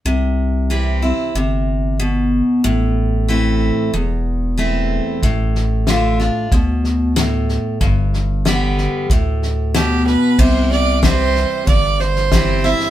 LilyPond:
<<
  \new Staff \with { instrumentName = "Fiddle" } { \time 4/4 \key c \major \tempo 4 = 93 r1 | r1 | r1 | r2. g'8 b'8 |
c''8 d''8 c''4 d''8 c''4 e''8 | }
  \new Staff \with { instrumentName = "Steel-string acoustic guitar" } { \clef bass \time 4/4 \key c \major << { r4 <e g c' e'>8 <c' e'>8 r2 | r4 <e a c' e'>4 r4 <e a c' e'>4 | r4 <d a d' f'>8 <d' f'>8 r2 | r4 <d g b g'>4 r2 |
r4 <e g c' e'>4 r4 <e g c' e'>8 <c' e'>8 | } \\ { c2 c4 b,4 | a,2 e,2 | a,2 b,4 a,4 | g,2 a,4 b,4 |
c2 g,2 | } >> }
  \new Staff \with { instrumentName = "Analog synth bass" } { \clef bass \time 4/4 \key c \major c,2 g,,2 | a,,2 e,,2 | a,,2 d,2 | g,,2 d,2 |
c,2 g,,2 | }
  \new DrumStaff \with { instrumentName = "Drums" } \drummode { \time 4/4 r4 r4 r4 r4 | r4 r4 r4 r4 | <bd sn>8 sn8 <hhp sn>8 sn8 <bd sn>8 sn8 <hhp sn>8 sn8 | <bd sn>8 sn8 <hhp sn>8 sn8 <bd sn>8 sn8 <hhp sn>8 sn8 |
<cymc bd sn>8 sn8 <hhp bd sn>8 sn8 <bd sn>8 sn16 sn16 <hhp bd sn>8 sn16 sn16 | }
>>